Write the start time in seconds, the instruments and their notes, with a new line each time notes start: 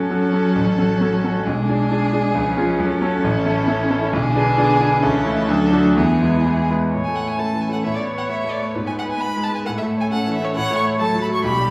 Already playing: grand piano F#2 C#4 F#4 A4, cello F#3, viola C#4, violin A4
0.10 grand piano C#4 F#4 A4
0.33 grand piano C#4 F#4 A4
0.55 grand piano A1
0.78 grand piano C#4 F#4 A4
1.01 grand piano C#4 F#4 A4
1.24 grand piano C#4 F#4 A4
1.46 grand piano B1, cello G#3, viola D4, violin G#4
1.69 grand piano D4 G#4
1.92 grand piano D4 G#4
2.13 grand piano D4 G#4
2.34 grand piano C#2, cello F3, viola C#4
2.57 grand piano C#4 F4 G#4
2.79 grand piano F#2, cello F#3, violin A4
3.02 grand piano C#4 F#4 A4
3.23 grand piano A1, cello E3
3.46 grand piano C#4 E4 A4
3.68 grand piano C#4 E4 A4
3.90 grand piano C#4 E4 A4
4.12 grand piano B1, cello D3, viola D4, violin G#4
4.35 grand piano B3 D4 G#4
4.58 grand piano B3 D4 G#4
4.80 grand piano B3 D4 G#4
5.02 grand piano C#2, cello E3, viola C#4, violin A4
5.26 grand piano A3 E4 A4
5.49 grand piano D2, cello F#3, viola D4
5.73 grand piano A3 D4 F#4
5.96 grand piano E2, cello E3, viola B3, violin G#4
6.21 grand piano G#3 B3 E4
6.45 grand piano G#3 B3 E4
6.70 grand piano G#3 B3 E4
6.92 grand piano A2, cello A3, viola C#5
7.04 violin G#5
7.08 grand piano A3
7.16 violin F#5
7.24 grand piano E4, violin G#5
7.38 grand piano A3, cello C#4, viola A4, violin A5
7.54 grand piano E3
7.61 violin G#5
7.69 grand piano A3, violin F#5
7.84 grand piano A2, cello B3, viola C#5, violin E5
7.95 violin D5
7.99 grand piano B3
8.14 grand piano B4, violin F#5
8.28 cello A3, grand piano B3, violin E5
8.45 grand piano A3
8.51 violin D5
8.60 grand piano B3, violin C#5
8.75 grand piano G#2, cello B3, viola B4
8.87 violin G#5
8.91 grand piano B3
8.99 violin F#5
9.06 grand piano B4, violin G#5
9.20 cello G#3, grand piano B3, violin B5
9.36 grand piano G#3
9.43 violin A5
9.52 grand piano B3, violin G#5
9.65 grand piano A2, cello A3, viola A4, violin F#5
9.78 violin E5
9.82 grand piano A3
9.97 grand piano C#5, violin G#5
10.11 grand piano A3, cello C#4, violin F#5
10.27 grand piano E3
10.34 violin E5
10.41 grand piano A3, violin C#5
10.55 grand piano A2, cello A3, viola C#5, violin F#5
10.71 grand piano A3
10.76 violin C#6
10.85 grand piano C#5
10.99 cello F#3, grand piano A3, viola A4, violin A5
11.15 grand piano F#3
11.22 violin B5
11.29 grand piano A3
11.34 violin C#6
11.44 grand piano B1, cello G3, viola G4, violin B5
11.59 grand piano G3